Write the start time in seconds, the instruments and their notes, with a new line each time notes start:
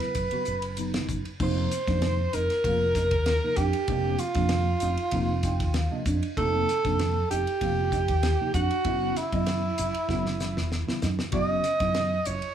Already playing: tine electric piano C#3 F#3 B3 E4, alto saxophone B4
0.00 snare, ride
0.15 fingered electric bass F#1, kick, hi-hat pedal, ride
0.31 tine electric piano C#3 F#3 B3 F#4, muted fingered electric bass stroke, ride
0.45 fingered electric bass F#1, tine electric piano B3 F#4, hi-hat pedal
0.62 ride
0.77 tine electric piano C#3 F#3 B3 D#4, hi-hat pedal, ride
0.94 snare, ride
1.09 fingered electric bass F#1, kick, hi-hat pedal
1.25 ride
1.40 fingered electric bass F1, tine electric piano C3 F3 A#3 D#4, clean electric guitar D#4, alto saxophone C5, kick, crash
1.56 clean electric guitar C4
1.71 hi-hat pedal, ride
1.87 fingered electric bass F2, tine electric piano C3 F3 A#3 D#4, clean electric guitar D4, kick, snare, ride
2.02 snare, ride
2.32 fingered electric bass F1, tine electric piano A#3 D4, clean electric guitar D#4, alto saxophone A#4, hi-hat pedal, ride
2.50 snare, ride
2.64 fingered electric bass F1, tine electric piano C3 F3 A#3 F4, clean electric guitar F4, kick, ride
2.95 tine electric piano A#3 D#4, clean electric guitar D#4, kick, snare, hi-hat pedal, ride
3.11 fingered electric bass D#2, kick, ride
3.26 snare, ride
3.43 tine electric piano C3 F3 A#3 D#4
3.56 fingered electric bass F2, clean electric guitar D4, tine electric piano D#4, alto saxophone G4, kick, hi-hat pedal, ride
3.73 muted fingered electric bass stroke, ride
3.88 fingered electric bass F1, tine electric piano C3 F3 A#3 D4, clean electric guitar D#4, kick, ride
4.07 clean electric guitar C4
4.19 alto saxophone F4, hi-hat pedal, ride
4.34 fingered electric bass F2, tine electric piano C3 F3 A#3 D4, clean electric guitar D4, kick, snare, ride
4.49 snare, ride
4.80 fingered electric bass F1, tine electric piano A#3 F4, clean electric guitar D#4, hi-hat pedal, ride
4.97 ride
5.11 fingered electric bass F1, tine electric piano C3 F3 A#3 D#4, clean electric guitar F4, kick, ride
5.43 tine electric piano A#3 F4 G5, clean electric guitar D#4, kick, snare, hi-hat pedal, ride
5.60 fingered electric bass D#2, kick, snare, ride
5.74 tine electric piano F5, snare, ride
5.91 tine electric piano C3 F3 A#3 D4 D#5
6.06 fingered electric bass F2, tine electric piano A#3 D4, clean electric guitar D4, kick, hi-hat pedal, ride
6.23 muted fingered electric bass stroke, ride
6.37 fingered electric bass F1, tine electric piano C3 F3 A#3 D#4, clean electric guitar D#4, alto saxophone A4, kick, ride
6.54 clean electric guitar C4
6.69 snare, hi-hat pedal, ride
6.85 fingered electric bass F2, tine electric piano C3 F3 A#3 D4, clean electric guitar D4, kick, snare, ride
6.99 snare, ride
7.30 fingered electric bass F1, tine electric piano A#3 C4, clean electric guitar D#4, alto saxophone G4, hi-hat pedal, ride
7.47 ride
7.61 fingered electric bass F1, tine electric piano C3 F3 A#3 F4, clean electric guitar F4, kick, ride
7.92 tine electric piano A#3 F4, clean electric guitar D#4, kick, snare, hi-hat pedal, ride
8.08 fingered electric bass D#2, kick, ride
8.23 snare, ride
8.40 tine electric piano C3 F3 A#3 D#4
8.54 fingered electric bass F2, clean electric guitar D4, tine electric piano D#4, alto saxophone F#4, kick, hi-hat pedal, ride
8.71 muted fingered electric bass stroke, ride
8.84 fingered electric bass F#1, tine electric piano C#3 F#3 B3 E4, clean electric guitar E4, kick, ride
9.03 clean electric guitar C#4
9.16 alto saxophone E4, snare, hi-hat pedal, ride
9.32 fingered electric bass F#2, tine electric piano C#3 F#3 B3 E4, clean electric guitar D#5, kick, ride
9.47 snare, ride
9.78 fingered electric bass F#1, tine electric piano B3 D#4, clean electric guitar E4, hi-hat pedal, ride
9.95 ride
10.08 fingered electric bass F#1, tine electric piano C#3 F#3 B3 E4, clean electric guitar F#4, kick, snare
10.26 snare
10.39 tine electric piano B3 C#4, clean electric guitar E4, snare, hi-hat pedal
10.57 fingered electric bass E1, snare
10.72 snare
10.87 tine electric piano C#3 F#3 B3 E4, snare
11.01 fingered electric bass F#2, tine electric piano B3, clean electric guitar D#4, snare, hi-hat pedal
11.19 muted fingered electric bass stroke, snare
11.31 fingered electric bass F#1, tine electric piano C#3 F#3 B3 F#4, clean electric guitar E4, alto saxophone D#5, kick, ride
11.50 clean electric guitar C#4
11.64 snare, hi-hat pedal, ride
11.80 fingered electric bass F#2, tine electric piano C#3 F#3 B3 E4, clean electric guitar D#4, kick, snare, ride
11.94 snare, ride
12.25 fingered electric bass F#1, tine electric piano B3 E4, clean electric guitar E4, alto saxophone C#5, hi-hat pedal, ride
12.42 ride